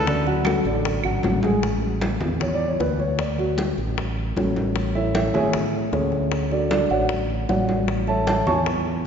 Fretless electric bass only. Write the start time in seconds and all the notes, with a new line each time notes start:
Already playing: D2
0.65 A1
1.04 G#1
1.24 A1
2.21 E2
2.80 D2
3.78 A1
4.36 A1
5.34 A2
5.92 D2
6.90 A1
7.49 A1
8.46 E2